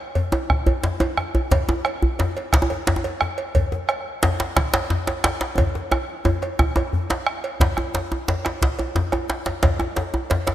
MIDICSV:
0, 0, Header, 1, 4, 480
1, 0, Start_track
1, 0, Tempo, 338219
1, 2152, Time_signature, 12, 3, 24, 8
1, 14968, End_track
2, 0, Start_track
2, 0, Title_t, "Bombo"
2, 708, Note_on_c, 9, 37, 96
2, 708, Note_on_c, 9, 43, 93
2, 850, Note_off_c, 9, 37, 0
2, 850, Note_off_c, 9, 43, 0
2, 1667, Note_on_c, 9, 37, 97
2, 1809, Note_off_c, 9, 37, 0
2, 2150, Note_on_c, 9, 43, 97
2, 2292, Note_off_c, 9, 43, 0
2, 2622, Note_on_c, 9, 37, 96
2, 2764, Note_off_c, 9, 37, 0
2, 3586, Note_on_c, 9, 37, 89
2, 3586, Note_on_c, 9, 43, 98
2, 3728, Note_off_c, 9, 37, 0
2, 3728, Note_off_c, 9, 43, 0
2, 4551, Note_on_c, 9, 37, 96
2, 4693, Note_off_c, 9, 37, 0
2, 5035, Note_on_c, 9, 43, 84
2, 5177, Note_off_c, 9, 43, 0
2, 5517, Note_on_c, 9, 37, 97
2, 5659, Note_off_c, 9, 37, 0
2, 6478, Note_on_c, 9, 37, 91
2, 6478, Note_on_c, 9, 43, 91
2, 6620, Note_off_c, 9, 37, 0
2, 6620, Note_off_c, 9, 43, 0
2, 7436, Note_on_c, 9, 37, 99
2, 7578, Note_off_c, 9, 37, 0
2, 7918, Note_on_c, 9, 37, 28
2, 7918, Note_on_c, 9, 43, 93
2, 8060, Note_off_c, 9, 37, 0
2, 8060, Note_off_c, 9, 43, 0
2, 8403, Note_on_c, 9, 37, 92
2, 8545, Note_off_c, 9, 37, 0
2, 9121, Note_on_c, 9, 37, 30
2, 9263, Note_off_c, 9, 37, 0
2, 9356, Note_on_c, 9, 37, 93
2, 9356, Note_on_c, 9, 43, 93
2, 9498, Note_off_c, 9, 37, 0
2, 9498, Note_off_c, 9, 43, 0
2, 10311, Note_on_c, 9, 37, 107
2, 10453, Note_off_c, 9, 37, 0
2, 10552, Note_on_c, 9, 37, 33
2, 10694, Note_off_c, 9, 37, 0
2, 10785, Note_on_c, 9, 37, 29
2, 10785, Note_on_c, 9, 43, 87
2, 10927, Note_off_c, 9, 37, 0
2, 10927, Note_off_c, 9, 43, 0
2, 11025, Note_on_c, 9, 37, 69
2, 11167, Note_off_c, 9, 37, 0
2, 11270, Note_on_c, 9, 37, 25
2, 11412, Note_off_c, 9, 37, 0
2, 11988, Note_on_c, 9, 37, 66
2, 12130, Note_off_c, 9, 37, 0
2, 12227, Note_on_c, 9, 43, 81
2, 12369, Note_off_c, 9, 43, 0
2, 12710, Note_on_c, 9, 37, 28
2, 12852, Note_off_c, 9, 37, 0
2, 12947, Note_on_c, 9, 37, 64
2, 13089, Note_off_c, 9, 37, 0
2, 13666, Note_on_c, 9, 37, 25
2, 13666, Note_on_c, 9, 43, 85
2, 13808, Note_off_c, 9, 37, 0
2, 13808, Note_off_c, 9, 43, 0
2, 13903, Note_on_c, 9, 37, 69
2, 14045, Note_off_c, 9, 37, 0
2, 14145, Note_on_c, 9, 37, 28
2, 14287, Note_off_c, 9, 37, 0
2, 14865, Note_on_c, 9, 37, 62
2, 14968, Note_off_c, 9, 37, 0
2, 14968, End_track
3, 0, Start_track
3, 0, Title_t, "Djembe"
3, 222, Note_on_c, 9, 63, 71
3, 222, Note_on_c, 9, 64, 72
3, 363, Note_off_c, 9, 63, 0
3, 363, Note_off_c, 9, 64, 0
3, 457, Note_on_c, 9, 63, 101
3, 470, Note_on_c, 9, 62, 55
3, 599, Note_off_c, 9, 63, 0
3, 612, Note_off_c, 9, 62, 0
3, 943, Note_on_c, 9, 64, 80
3, 949, Note_on_c, 9, 63, 62
3, 1085, Note_off_c, 9, 64, 0
3, 1091, Note_off_c, 9, 63, 0
3, 1185, Note_on_c, 9, 62, 74
3, 1187, Note_off_c, 9, 62, 0
3, 1187, Note_on_c, 9, 62, 23
3, 1187, Note_on_c, 9, 64, 71
3, 1329, Note_off_c, 9, 62, 0
3, 1329, Note_off_c, 9, 64, 0
3, 1422, Note_on_c, 9, 63, 103
3, 1430, Note_on_c, 9, 62, 57
3, 1564, Note_off_c, 9, 63, 0
3, 1572, Note_off_c, 9, 62, 0
3, 1669, Note_on_c, 9, 63, 67
3, 1811, Note_off_c, 9, 63, 0
3, 1910, Note_on_c, 9, 64, 74
3, 2052, Note_off_c, 9, 64, 0
3, 2149, Note_on_c, 9, 64, 67
3, 2151, Note_on_c, 9, 62, 74
3, 2291, Note_off_c, 9, 64, 0
3, 2293, Note_off_c, 9, 62, 0
3, 2393, Note_on_c, 9, 63, 101
3, 2398, Note_off_c, 9, 63, 0
3, 2398, Note_on_c, 9, 62, 53
3, 2398, Note_on_c, 9, 63, 54
3, 2540, Note_off_c, 9, 62, 0
3, 2540, Note_off_c, 9, 63, 0
3, 2873, Note_on_c, 9, 64, 80
3, 3015, Note_off_c, 9, 64, 0
3, 3117, Note_on_c, 9, 62, 81
3, 3120, Note_on_c, 9, 63, 65
3, 3120, Note_on_c, 9, 64, 68
3, 3258, Note_off_c, 9, 62, 0
3, 3262, Note_off_c, 9, 63, 0
3, 3262, Note_off_c, 9, 64, 0
3, 3370, Note_on_c, 9, 62, 57
3, 3512, Note_off_c, 9, 62, 0
3, 3600, Note_on_c, 9, 62, 101
3, 3719, Note_on_c, 9, 63, 81
3, 3741, Note_off_c, 9, 62, 0
3, 3850, Note_off_c, 9, 63, 0
3, 3850, Note_on_c, 9, 63, 65
3, 3992, Note_off_c, 9, 63, 0
3, 4076, Note_on_c, 9, 62, 102
3, 4087, Note_off_c, 9, 62, 0
3, 4087, Note_on_c, 9, 62, 25
3, 4087, Note_on_c, 9, 64, 75
3, 4203, Note_on_c, 9, 63, 74
3, 4229, Note_off_c, 9, 62, 0
3, 4229, Note_off_c, 9, 64, 0
3, 4327, Note_on_c, 9, 62, 63
3, 4345, Note_off_c, 9, 63, 0
3, 4469, Note_off_c, 9, 62, 0
3, 4567, Note_on_c, 9, 63, 82
3, 4709, Note_off_c, 9, 63, 0
3, 5042, Note_on_c, 9, 64, 88
3, 5184, Note_off_c, 9, 64, 0
3, 5281, Note_on_c, 9, 62, 61
3, 5281, Note_on_c, 9, 63, 62
3, 5423, Note_off_c, 9, 62, 0
3, 5423, Note_off_c, 9, 63, 0
3, 6000, Note_on_c, 9, 62, 106
3, 6010, Note_on_c, 9, 63, 86
3, 6010, Note_on_c, 9, 64, 86
3, 6141, Note_off_c, 9, 62, 0
3, 6152, Note_off_c, 9, 63, 0
3, 6152, Note_off_c, 9, 64, 0
3, 6243, Note_on_c, 9, 62, 77
3, 6247, Note_off_c, 9, 62, 0
3, 6247, Note_on_c, 9, 62, 66
3, 6389, Note_off_c, 9, 62, 0
3, 6480, Note_on_c, 9, 62, 82
3, 6622, Note_off_c, 9, 62, 0
3, 6722, Note_on_c, 9, 62, 105
3, 6724, Note_on_c, 9, 63, 72
3, 6864, Note_off_c, 9, 62, 0
3, 6866, Note_off_c, 9, 63, 0
3, 6958, Note_on_c, 9, 62, 73
3, 6958, Note_on_c, 9, 64, 88
3, 7100, Note_off_c, 9, 62, 0
3, 7100, Note_off_c, 9, 64, 0
3, 7201, Note_on_c, 9, 62, 78
3, 7211, Note_off_c, 9, 62, 0
3, 7211, Note_on_c, 9, 62, 73
3, 7353, Note_off_c, 9, 62, 0
3, 7438, Note_on_c, 9, 62, 103
3, 7443, Note_on_c, 9, 63, 85
3, 7580, Note_off_c, 9, 62, 0
3, 7585, Note_off_c, 9, 63, 0
3, 7675, Note_on_c, 9, 62, 76
3, 7817, Note_off_c, 9, 62, 0
3, 7917, Note_on_c, 9, 63, 95
3, 7929, Note_on_c, 9, 62, 28
3, 7929, Note_on_c, 9, 64, 86
3, 8058, Note_off_c, 9, 63, 0
3, 8071, Note_off_c, 9, 62, 0
3, 8071, Note_off_c, 9, 64, 0
3, 8164, Note_on_c, 9, 62, 65
3, 8164, Note_on_c, 9, 63, 62
3, 8306, Note_off_c, 9, 62, 0
3, 8306, Note_off_c, 9, 63, 0
3, 8396, Note_on_c, 9, 63, 105
3, 8538, Note_off_c, 9, 63, 0
3, 8646, Note_on_c, 9, 62, 26
3, 8788, Note_off_c, 9, 62, 0
3, 8871, Note_on_c, 9, 63, 100
3, 8874, Note_off_c, 9, 63, 0
3, 8874, Note_on_c, 9, 63, 74
3, 8874, Note_on_c, 9, 64, 78
3, 9016, Note_off_c, 9, 63, 0
3, 9016, Note_off_c, 9, 64, 0
3, 9114, Note_on_c, 9, 62, 62
3, 9256, Note_off_c, 9, 62, 0
3, 9355, Note_on_c, 9, 63, 97
3, 9497, Note_off_c, 9, 63, 0
3, 9590, Note_on_c, 9, 63, 105
3, 9600, Note_off_c, 9, 63, 0
3, 9600, Note_on_c, 9, 62, 28
3, 9600, Note_on_c, 9, 63, 69
3, 9742, Note_off_c, 9, 62, 0
3, 9742, Note_off_c, 9, 63, 0
3, 9837, Note_on_c, 9, 62, 25
3, 9837, Note_on_c, 9, 64, 77
3, 9979, Note_off_c, 9, 62, 0
3, 9979, Note_off_c, 9, 64, 0
3, 10072, Note_on_c, 9, 62, 63
3, 10080, Note_off_c, 9, 62, 0
3, 10080, Note_on_c, 9, 62, 98
3, 10222, Note_off_c, 9, 62, 0
3, 10790, Note_on_c, 9, 62, 24
3, 10790, Note_on_c, 9, 64, 73
3, 10801, Note_off_c, 9, 62, 0
3, 10801, Note_on_c, 9, 62, 98
3, 10932, Note_off_c, 9, 64, 0
3, 10943, Note_off_c, 9, 62, 0
3, 11036, Note_on_c, 9, 62, 61
3, 11036, Note_on_c, 9, 63, 79
3, 11178, Note_off_c, 9, 62, 0
3, 11178, Note_off_c, 9, 63, 0
3, 11276, Note_on_c, 9, 63, 77
3, 11279, Note_on_c, 9, 62, 75
3, 11418, Note_off_c, 9, 63, 0
3, 11421, Note_off_c, 9, 62, 0
3, 11519, Note_on_c, 9, 63, 79
3, 11661, Note_off_c, 9, 63, 0
3, 11756, Note_on_c, 9, 62, 78
3, 11756, Note_on_c, 9, 64, 74
3, 11898, Note_off_c, 9, 62, 0
3, 11898, Note_off_c, 9, 64, 0
3, 11994, Note_on_c, 9, 62, 64
3, 12003, Note_off_c, 9, 62, 0
3, 12003, Note_on_c, 9, 62, 73
3, 12145, Note_off_c, 9, 62, 0
3, 12241, Note_on_c, 9, 62, 96
3, 12242, Note_off_c, 9, 62, 0
3, 12242, Note_on_c, 9, 62, 26
3, 12384, Note_off_c, 9, 62, 0
3, 12480, Note_on_c, 9, 63, 72
3, 12622, Note_off_c, 9, 63, 0
3, 12709, Note_on_c, 9, 63, 84
3, 12709, Note_on_c, 9, 64, 78
3, 12712, Note_on_c, 9, 62, 70
3, 12851, Note_off_c, 9, 63, 0
3, 12851, Note_off_c, 9, 64, 0
3, 12854, Note_off_c, 9, 62, 0
3, 12955, Note_on_c, 9, 62, 69
3, 12955, Note_on_c, 9, 63, 75
3, 13097, Note_off_c, 9, 62, 0
3, 13097, Note_off_c, 9, 63, 0
3, 13192, Note_on_c, 9, 62, 78
3, 13201, Note_off_c, 9, 62, 0
3, 13201, Note_on_c, 9, 62, 26
3, 13343, Note_off_c, 9, 62, 0
3, 13425, Note_on_c, 9, 62, 79
3, 13441, Note_on_c, 9, 63, 68
3, 13567, Note_off_c, 9, 62, 0
3, 13583, Note_off_c, 9, 63, 0
3, 13662, Note_on_c, 9, 62, 92
3, 13674, Note_off_c, 9, 62, 0
3, 13674, Note_on_c, 9, 62, 28
3, 13674, Note_on_c, 9, 64, 88
3, 13816, Note_off_c, 9, 62, 0
3, 13816, Note_off_c, 9, 64, 0
3, 13900, Note_on_c, 9, 63, 79
3, 13915, Note_on_c, 9, 62, 63
3, 14042, Note_off_c, 9, 63, 0
3, 14057, Note_off_c, 9, 62, 0
3, 14143, Note_on_c, 9, 62, 73
3, 14153, Note_on_c, 9, 63, 86
3, 14285, Note_off_c, 9, 62, 0
3, 14294, Note_off_c, 9, 63, 0
3, 14386, Note_on_c, 9, 63, 79
3, 14528, Note_off_c, 9, 63, 0
3, 14628, Note_on_c, 9, 62, 77
3, 14633, Note_on_c, 9, 64, 80
3, 14770, Note_off_c, 9, 62, 0
3, 14775, Note_off_c, 9, 64, 0
3, 14863, Note_on_c, 9, 62, 75
3, 14873, Note_off_c, 9, 62, 0
3, 14873, Note_on_c, 9, 62, 64
3, 14873, Note_on_c, 9, 63, 67
3, 14968, Note_off_c, 9, 62, 0
3, 14968, Note_off_c, 9, 63, 0
3, 14968, End_track
4, 0, Start_track
4, 0, Title_t, "Drums"
4, 217, Note_on_c, 9, 56, 51
4, 359, Note_off_c, 9, 56, 0
4, 462, Note_on_c, 9, 56, 47
4, 603, Note_off_c, 9, 56, 0
4, 947, Note_on_c, 9, 56, 53
4, 1089, Note_off_c, 9, 56, 0
4, 1435, Note_on_c, 9, 56, 53
4, 1576, Note_off_c, 9, 56, 0
4, 1912, Note_on_c, 9, 56, 50
4, 2053, Note_off_c, 9, 56, 0
4, 2157, Note_on_c, 9, 56, 66
4, 2299, Note_off_c, 9, 56, 0
4, 2633, Note_on_c, 9, 56, 52
4, 2775, Note_off_c, 9, 56, 0
4, 3109, Note_on_c, 9, 56, 55
4, 3251, Note_off_c, 9, 56, 0
4, 3358, Note_on_c, 9, 56, 51
4, 3500, Note_off_c, 9, 56, 0
4, 3833, Note_on_c, 9, 56, 52
4, 3975, Note_off_c, 9, 56, 0
4, 4318, Note_on_c, 9, 56, 56
4, 4460, Note_off_c, 9, 56, 0
4, 4794, Note_on_c, 9, 56, 52
4, 4936, Note_off_c, 9, 56, 0
4, 5036, Note_on_c, 9, 56, 65
4, 5178, Note_off_c, 9, 56, 0
4, 5524, Note_on_c, 9, 56, 56
4, 5666, Note_off_c, 9, 56, 0
4, 6006, Note_on_c, 9, 56, 53
4, 6148, Note_off_c, 9, 56, 0
4, 6719, Note_on_c, 9, 56, 50
4, 6861, Note_off_c, 9, 56, 0
4, 7203, Note_on_c, 9, 56, 53
4, 7345, Note_off_c, 9, 56, 0
4, 7918, Note_on_c, 9, 56, 63
4, 8060, Note_off_c, 9, 56, 0
4, 8393, Note_on_c, 9, 56, 53
4, 8535, Note_off_c, 9, 56, 0
4, 8871, Note_on_c, 9, 56, 54
4, 9013, Note_off_c, 9, 56, 0
4, 9121, Note_on_c, 9, 56, 57
4, 9263, Note_off_c, 9, 56, 0
4, 9606, Note_on_c, 9, 56, 56
4, 9748, Note_off_c, 9, 56, 0
4, 10082, Note_on_c, 9, 56, 57
4, 10224, Note_off_c, 9, 56, 0
4, 10559, Note_on_c, 9, 56, 55
4, 10701, Note_off_c, 9, 56, 0
4, 10794, Note_on_c, 9, 56, 57
4, 10936, Note_off_c, 9, 56, 0
4, 11274, Note_on_c, 9, 56, 47
4, 11416, Note_off_c, 9, 56, 0
4, 11754, Note_on_c, 9, 56, 47
4, 11896, Note_off_c, 9, 56, 0
4, 11997, Note_on_c, 9, 56, 50
4, 12139, Note_off_c, 9, 56, 0
4, 12470, Note_on_c, 9, 56, 53
4, 12612, Note_off_c, 9, 56, 0
4, 12946, Note_on_c, 9, 56, 54
4, 13088, Note_off_c, 9, 56, 0
4, 13431, Note_on_c, 9, 56, 51
4, 13573, Note_off_c, 9, 56, 0
4, 13668, Note_on_c, 9, 56, 66
4, 13810, Note_off_c, 9, 56, 0
4, 14139, Note_on_c, 9, 56, 51
4, 14281, Note_off_c, 9, 56, 0
4, 14616, Note_on_c, 9, 56, 53
4, 14758, Note_off_c, 9, 56, 0
4, 14854, Note_on_c, 9, 56, 50
4, 14968, Note_off_c, 9, 56, 0
4, 14968, End_track
0, 0, End_of_file